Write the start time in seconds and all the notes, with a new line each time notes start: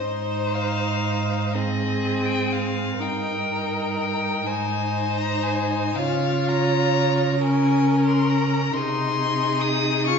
Already playing: C5
0.00 G#2 D#4
0.54 F5
1.53 C4 G#4 D#5
2.26 G5
2.53 F5
2.98 G2 D#4 A#4 G5
4.00 G5
4.46 G#2 D#4 C5 G#5
5.17 A#5
5.43 G#5
5.95 C#3 F4 C#5 F5
6.49 A#5
7.37 A#5
7.42 C#4 A#4 G#5
8.07 C6
8.30 A#5
8.73 C3 D#4 G#4 C6
9.61 D#6
10.07 C#3 F4 C#6